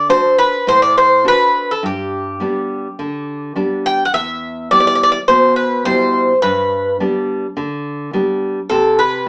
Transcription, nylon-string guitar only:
0.09 0.56 D4 soft
0.09 0.56 F#4 soft
0.09 0.56 A4 medium
0.67 1.24 A2 medium
1.24 1.71 D4 soft
1.24 1.72 F#4 soft
1.24 1.72 A4 medium
1.83 2.39 G2 medium
2.40 2.87 G3 soft
2.40 2.87 B3 soft
2.40 2.87 D4 soft
2.99 3.55 D3 medium
3.56 4.02 G3 soft
3.56 4.02 B3 soft
3.56 4.02 D4 medium
4.14 4.69 E2 medium
4.71 5.17 G3 soft
4.71 5.18 B3 soft
4.71 5.18 E4 medium
5.29 5.84 B2 medium
5.86 6.32 B2 soft
5.86 6.31 G3 medium
5.86 6.32 E4 medium
6.43 6.98 G2 medium
7.00 7.46 G3 medium
7.00 7.46 B3 soft
7.00 7.46 D4 medium
7.57 8.12 D3 medium
8.13 8.59 G3 medium
8.13 8.59 B3 soft
8.13 8.59 D4 medium
8.71 9.26 C3 medium

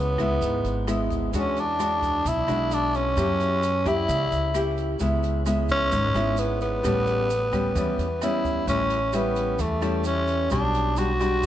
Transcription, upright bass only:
0.00 0.38 C#2 medium
0.42 0.63 G#1 medium
0.64 1.29 G#1 medium
1.33 2.21 E2 medium
2.25 2.46 B1 medium
2.48 3.13 B1 medium
3.17 4.05 F#2 medium
4.09 4.30 C#2 loud
4.31 4.96 C#2 medium
5.00 5.88 C#2 medium
5.92 6.14 G#1 loud
6.14 6.80 G#1 medium
6.84 7.72 A1 medium
7.75 7.97 E2 medium
7.98 8.63 E2 medium
8.67 9.55 A1 loud
9.59 10.47 E2 medium
10.51 11.39 B1 medium

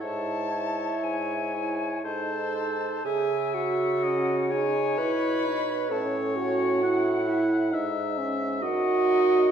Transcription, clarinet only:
0.00 1.87 E5 medium
2.04 3.01 A4 loud
3.05 3.56 G#4 loud
3.54 4.53 F#4 loud
4.51 4.99 G#4 loud
4.98 5.91 B4 loud
5.90 6.38 A4 loud
6.36 7.30 F#4 loud
7.28 7.73 E4 medium
8.62 9.52 F#4 loud

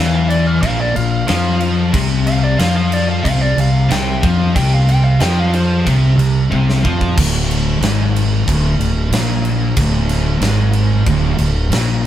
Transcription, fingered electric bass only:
0.00 0.58 E2 medium
0.63 0.93 A#1 medium
0.96 1.26 A#1 medium
1.30 1.90 F2 medium
1.94 2.55 C2 loud
2.59 3.20 F2 medium
3.26 3.55 C2 medium
3.57 3.87 C2 medium
3.91 4.21 C2 loud
4.23 4.53 F2 loud
4.56 5.17 C2 loud
5.21 5.82 F2 loud
5.87 6.17 C2 medium
6.17 6.48 C2 medium
6.52 6.82 C2 loud
6.85 7.15 F2 medium
7.18 7.79 D1 loud
7.80 8.42 G#1 medium
8.48 8.78 D1 loud
8.79 9.09 D1 medium
9.10 9.72 A#1 loud
9.77 10.38 D1 loud
10.40 11.02 G#1 medium
11.06 11.36 D1 medium
11.38 11.69 D1 medium
11.70 12.07 A#1 loud

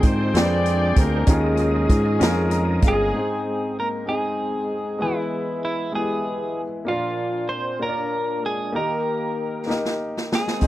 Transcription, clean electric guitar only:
2.88 3.79 G#4 medium
3.80 3.88 A#4 medium
4.09 5.04 G#4 medium
5.02 5.64 E4 medium
5.65 5.95 E4 medium
5.95 6.61 G#4 medium
6.88 7.46 F4 medium
7.49 7.79 C5 medium
7.83 8.45 A#4 medium
8.46 8.76 G#4 medium
8.76 9.96 A#4 medium
10.35 10.67 G#4 medium

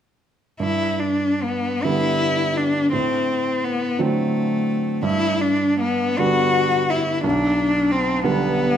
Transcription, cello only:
0.60 1.01 E4 soft
1.00 1.44 D4 soft
1.43 1.85 B3 soft
1.83 2.59 E4 medium
2.57 2.92 D4 soft
2.92 3.65 C4 soft
3.64 4.02 B3 soft
4.00 5.04 A3 soft
5.05 5.42 E4 medium
5.40 5.79 D4 soft
5.80 6.20 B3 medium
6.18 6.92 F#4 medium
6.90 7.24 E4 medium
7.24 7.93 D4 medium
7.91 8.25 C4 soft
8.26 8.77 B3 medium

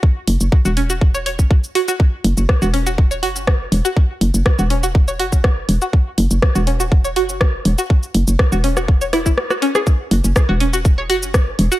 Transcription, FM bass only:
0.28 0.37 F#1 medium
0.41 0.49 F#1 medium
0.65 1.41 E1 medium
1.39 1.48 F#1 loud
2.25 2.34 F#1 medium
2.38 2.46 F#1 medium
2.62 3.24 E1 loud
3.23 3.67 F#1 medium
3.72 3.81 E1 medium
4.21 4.31 F#1 medium
4.34 4.43 F#1 medium
4.59 5.21 E1 medium
5.20 5.64 F#1 medium
5.69 5.78 E1 medium
6.18 6.27 F#1 loud
6.31 6.39 F#1 medium
6.56 7.18 E1 loud
7.16 7.60 F#1 medium
7.66 7.75 E1 medium
8.15 8.24 F#1 medium
8.28 8.36 F#1 medium
8.52 9.27 E1 medium
9.26 9.34 F#1 loud
10.11 10.21 F#1 loud
10.24 10.33 F#1 medium
10.49 11.11 E1 loud
11.10 11.54 F#1 medium
11.59 11.68 E1 medium

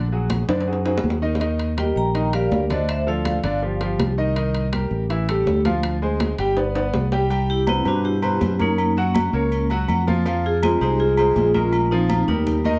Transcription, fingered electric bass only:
0.00 0.43 A#1 medium
0.48 1.00 F#2 medium
1.04 1.90 D#2 medium
1.96 2.48 A#1 medium
2.51 3.38 D2 medium
3.43 3.95 G1 medium
3.98 4.85 C2 medium
4.91 5.42 A1 loud
5.46 6.33 D2 medium
6.38 6.90 G1 medium
6.94 7.80 C2 medium
7.85 8.37 G2 medium
8.41 9.27 F#2 medium
9.33 9.85 C#2 loud
9.88 10.75 F2 medium
10.81 11.32 C2 medium
11.36 12.22 A#1 medium
12.28 12.79 D#2 medium

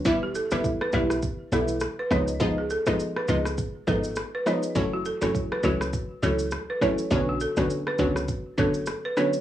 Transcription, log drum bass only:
0.05 0.40 E1 loud
0.52 0.61 E1 loud
0.93 1.28 B1 medium
1.52 1.87 B1 loud
2.11 2.77 C#2 loud
3.29 3.64 C#2 medium
3.88 4.23 G#1 medium
4.76 5.11 F#1 loud
5.22 5.31 F#1 loud
5.64 5.99 C#2 medium
6.23 6.58 C#2 medium
7.11 7.46 B1 loud
7.57 7.67 B1 medium
7.99 8.34 C#2 medium
8.58 8.93 F#1 medium

